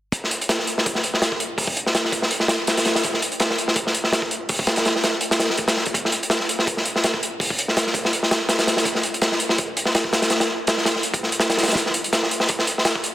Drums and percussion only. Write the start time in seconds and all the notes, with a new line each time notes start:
0.12 kick, closed hi-hat
0.24 snare
0.31 closed hi-hat
0.41 closed hi-hat
0.49 snare, closed hi-hat
0.59 snare
0.67 closed hi-hat
0.78 snare
0.86 kick, closed hi-hat
0.95 snare
1.04 closed hi-hat
1.14 snare
1.22 snare, closed hi-hat
1.32 kick
1.40 closed hi-hat
1.58 kick, open hi-hat
1.67 kick
1.77 closed hi-hat
1.86 snare
1.95 snare, closed hi-hat
2.04 snare
2.12 kick, closed hi-hat
2.22 snare
2.31 closed hi-hat
2.40 snare
2.48 snare, closed hi-hat
2.67 snare, closed hi-hat
2.77 snare, closed hi-hat
2.85 snare, closed hi-hat
2.95 snare, closed hi-hat
3.03 kick, closed hi-hat
3.14 snare
3.22 closed hi-hat
3.32 closed hi-hat
3.40 snare, closed hi-hat
3.50 snare
3.58 closed hi-hat
3.68 snare
3.76 kick, closed hi-hat
3.87 snare
3.94 closed hi-hat
4.04 snare
4.13 snare, closed hi-hat
4.22 kick
4.31 closed hi-hat
4.49 kick, open hi-hat
4.59 kick
4.67 snare, closed hi-hat
4.76 snare, closed hi-hat
4.85 snare, closed hi-hat
4.96 snare
5.03 snare, closed hi-hat
5.21 closed hi-hat
5.31 snare, closed hi-hat
5.40 snare, closed hi-hat
5.50 snare
5.57 kick, closed hi-hat
5.68 snare, closed hi-hat
5.77 snare
5.86 kick, closed hi-hat
5.94 kick, closed hi-hat
6.05 snare
6.12 closed hi-hat
6.23 closed hi-hat
6.30 snare, closed hi-hat
6.40 snare
6.49 closed hi-hat
6.59 snare
6.67 kick, closed hi-hat
6.77 snare
6.85 closed hi-hat
6.96 snare
7.04 snare, closed hi-hat
7.14 kick
7.23 closed hi-hat
7.40 kick, open hi-hat
7.50 kick
7.59 closed hi-hat
7.68 snare
7.77 snare, closed hi-hat
7.87 snare
7.94 kick, closed hi-hat
8.05 snare
8.13 closed hi-hat
8.23 snare
8.31 snare, closed hi-hat
8.49 snare, closed hi-hat
8.59 snare, closed hi-hat
8.67 snare, closed hi-hat
8.77 snare, closed hi-hat
8.85 kick, closed hi-hat
8.95 snare
9.03 closed hi-hat
9.14 closed hi-hat
9.22 snare, closed hi-hat
9.32 snare
9.40 closed hi-hat
9.49 snare
9.58 kick, closed hi-hat
9.77 closed hi-hat
9.85 snare
9.95 snare, closed hi-hat
10.04 kick
10.13 snare, closed hi-hat
10.22 snare, closed hi-hat
10.30 snare, closed hi-hat
10.40 snare, closed hi-hat
10.67 snare, closed hi-hat
10.77 snare
10.85 snare, closed hi-hat
10.96 snare
11.03 closed hi-hat
11.14 kick, closed hi-hat
11.23 snare
11.32 closed hi-hat
11.40 snare, closed hi-hat
11.50 snare, closed hi-hat
11.57 snare, closed hi-hat
11.63 snare, closed hi-hat
11.68 snare, closed hi-hat
11.72 snare, closed hi-hat
11.77 kick, closed hi-hat
11.86 snare
11.94 closed hi-hat
12.04 closed hi-hat
12.13 snare, closed hi-hat
12.23 snare
12.31 closed hi-hat
12.40 snare
12.49 kick, closed hi-hat
12.59 snare
12.67 closed hi-hat
12.78 snare
12.85 snare, closed hi-hat
12.96 kick
13.04 closed hi-hat